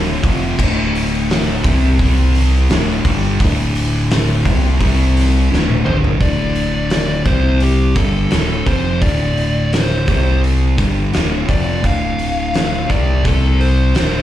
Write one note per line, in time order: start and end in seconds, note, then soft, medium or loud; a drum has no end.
0.00 0.21 D1 medium
0.00 0.23 D2 loud
0.00 0.23 A2 loud
0.00 0.23 D3 loud
0.23 0.57 F1 loud
0.23 0.58 F2 medium
0.23 0.58 C3 loud
0.23 0.58 F3 loud
0.23 kick loud
0.23 open hi-hat medium
0.58 1.60 D1 loud
0.58 1.63 D2 loud
0.58 1.63 A2 loud
0.58 1.63 D3 loud
0.58 kick medium
0.58 crash loud
0.95 open hi-hat medium
1.30 snare loud
1.30 open hi-hat medium
1.64 1.97 C2 medium
1.64 1.98 C3 loud
1.64 1.99 G3 loud
1.64 1.99 C4 loud
1.64 kick loud
1.64 open hi-hat medium
1.99 2.66 C2 medium
1.99 2.69 C3 medium
1.99 2.69 G3 loud
1.99 2.69 C4 medium
1.99 kick loud
1.99 open hi-hat medium
2.35 snare soft
2.35 open hi-hat medium
2.70 3.02 D1 medium
2.70 3.04 D2 medium
2.70 3.04 A2 medium
2.70 3.04 D3 medium
2.70 snare loud
2.70 open hi-hat medium
3.05 3.37 G1 medium
3.05 3.39 G2 medium
3.05 3.39 D3 medium
3.05 3.40 G3 loud
3.05 kick loud
3.05 open hi-hat medium
3.40 4.41 D1 medium
3.40 4.44 D2 medium
3.40 4.45 A2 loud
3.40 4.45 D3 loud
3.40 kick loud
3.40 open hi-hat medium
3.75 open hi-hat medium
4.10 snare loud
4.10 open hi-hat loud
4.45 4.78 C2 medium
4.45 4.79 C3 medium
4.45 4.79 G3 loud
4.45 4.80 C4 medium
4.45 kick loud
4.45 open hi-hat medium
4.80 5.47 C2 medium
4.80 5.50 C3 medium
4.80 5.50 G3 medium
4.80 5.51 C4 loud
4.80 kick loud
4.80 open hi-hat medium
5.17 snare soft
5.17 open hi-hat medium
5.50 5.84 D1 loud
5.50 5.84 D2 medium
5.50 5.85 A2 medium
5.50 5.85 D3 medium
5.50 snare medium
5.69 high tom medium
5.85 6.18 G1 medium
5.85 6.19 G2 medium
5.85 6.20 D3 loud
5.85 6.20 G3 loud
5.85 5.95 C5 loud
5.85 mid tom medium
6.04 floor tom medium
6.20 7.22 D1 medium
6.20 7.25 D2 medium
6.20 7.25 A2 loud
6.20 7.25 D3 loud
6.20 7.30 D5 loud
6.20 kick medium
6.20 open hi-hat medium
6.56 open hi-hat medium
6.90 snare loud
6.90 open hi-hat medium
7.25 7.92 C2 medium
7.25 7.95 C3 medium
7.25 7.95 G3 medium
7.25 7.96 C4 loud
7.25 7.63 C5 medium
7.25 kick loud
7.25 open hi-hat medium
7.60 7.98 G4 medium
7.60 open hi-hat medium
7.95 8.29 G1 medium
7.95 8.30 G2 loud
7.95 8.30 D3 loud
7.95 8.31 G3 loud
7.95 8.29 A4 medium
7.95 kick loud
7.95 open hi-hat medium
8.31 8.64 D1 medium
8.31 8.66 D2 medium
8.31 8.66 A2 medium
8.31 8.67 D3 loud
8.31 8.64 A4 medium
8.31 snare loud
8.31 open hi-hat medium
8.66 8.99 F1 medium
8.66 9.01 F2 medium
8.66 9.01 C3 medium
8.66 9.02 F3 loud
8.66 9.00 C5 medium
8.66 kick medium
8.66 open hi-hat medium
9.01 10.03 D1 medium
9.01 10.06 D2 loud
9.01 10.07 A2 medium
9.01 10.07 D3 loud
9.01 9.74 D5 loud
9.01 kick loud
9.01 open hi-hat medium
9.37 open hi-hat medium
9.73 10.39 C5 medium
9.73 snare loud
9.73 open hi-hat medium
10.07 10.74 C2 medium
10.07 10.77 C3 medium
10.07 10.77 G3 loud
10.07 10.77 C4 medium
10.07 kick loud
10.07 open hi-hat medium
10.44 open hi-hat medium
10.77 11.11 G1 medium
10.77 11.12 G2 loud
10.77 11.12 D3 loud
10.77 11.12 G3 loud
10.77 kick loud
10.77 open hi-hat medium
11.13 11.46 D1 medium
11.13 11.46 D2 loud
11.13 11.46 A2 loud
11.13 11.47 D3 loud
11.13 snare loud
11.13 open hi-hat medium
11.46 11.82 F1 loud
11.46 11.82 F2 medium
11.46 11.82 C3 medium
11.46 11.82 F3 loud
11.46 11.85 D5 medium
11.46 kick loud
11.46 open hi-hat medium
11.82 12.86 D1 medium
11.82 12.87 D2 loud
11.82 12.88 A2 loud
11.82 12.88 D3 loud
11.82 12.93 F5 loud
11.82 kick loud
11.82 open hi-hat medium
12.19 open hi-hat medium
12.54 snare loud
12.54 open hi-hat medium
12.89 13.22 C2 medium
12.89 13.22 C3 medium
12.89 13.23 G3 medium
12.89 13.23 C4 medium
12.89 13.26 D5 medium
12.89 kick loud
12.89 open hi-hat medium
13.23 13.91 C2 medium
13.23 13.93 C3 medium
13.23 13.94 G3 medium
13.23 13.94 C4 loud
13.23 13.58 A4 medium
13.23 kick loud
13.23 open hi-hat medium
13.61 13.93 C5 medium
13.61 open hi-hat medium
13.95 14.22 D1 medium
13.95 14.22 D2 medium
13.95 14.22 A2 loud
13.95 14.22 D3 medium
13.95 14.22 C5 medium
13.95 snare loud
13.95 open hi-hat medium